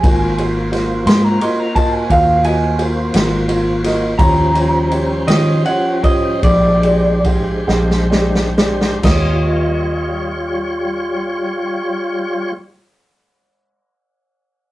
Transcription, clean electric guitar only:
\new Staff \with { instrumentName = "Clean electric guitar" } { \time 12/8 \key ees \mixolydian \tempo 4. = 51 aes''8 r4 c'''16 bes''16 c'''16 bes''16 a''16 aes''16 f''8 aes''8 r2 | bes''4. ees''8 ges''8 ees''8 d''4 r2 | ees''1. | }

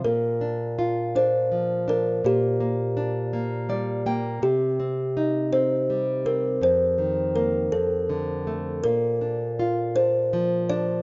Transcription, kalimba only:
\new Staff \with { instrumentName = "Kalimba" } { \time 6/8 \key bes \major \tempo 4. = 54 bes'4. c''4 bes'8 | g'2~ g'8 r8 | g'4. c''4 bes'8 | c''4 bes'8 a'4 r8 |
bes'4. c''4 d''8 | }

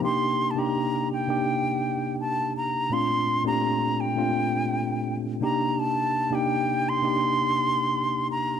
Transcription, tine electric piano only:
\new Staff \with { instrumentName = "Tine electric piano" } { \time 4/4 \key c \dorian \tempo 4 = 84 <c bes d' ees' g'>8 r16 <c bes d' ees' g'>8. r16 <c bes d' ees' g'>4. r8. | <bes, a c' d' f'>8 r16 <bes, a c' d' g'>8. r16 <bes, a c' d' f'>4. r16 <c bes d' ees' g'>8~ | <c bes d' ees' g'>8 r16 <c bes d' ees' g'>8. r16 <c bes d' ees' g'>4. r8. | }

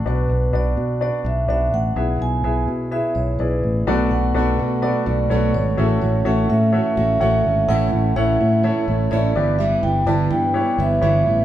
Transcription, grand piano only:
<<
  \new Staff \with { instrumentName = "Grand piano" } { \time 4/4 \key b \dorian \tempo 4 = 126 <d' fis' b' d''>4 <d' fis' b' d''>4 <d' fis' b' d''>4 <d' fis' b' d''>4 | <e' gis' b' e''>4 <e' gis' b' e''>4 <e' gis' b' e''>4 <e' gis' b' d''>4 | <fis' a' b' d''>4 <fis' a' b' d''>4 <fis' a' b' d''>4 <fis' a' b' cis''>4 | <fis' gis' a' cis'' e''>4 <fis' a' cis'' e''>4 <fis' a' cis'' e''>4 <fis' a' cis'' fis''>4 |
<e' a' cis'' dis'' e''>4 <e' a' cis'' fis''>4 <e' a' cis'' e''>4 <e' a' cis'' e''>8 <e' g' b' d''>8~ | <e' g' b' d''>4 <e' g' b' d''>4 <e' g' b' cis''>4 <e' g' b' cis''>4 | }
  \new Staff \with { instrumentName = "Grand piano" } { \clef bass \time 4/4 \key b \dorian b,4. r2 r8 | b,4. r2 r8 | b,4. r2 r8 | a,4. r2 r8 |
a,4. r2 g,8~ | g,4 r2. | }
>>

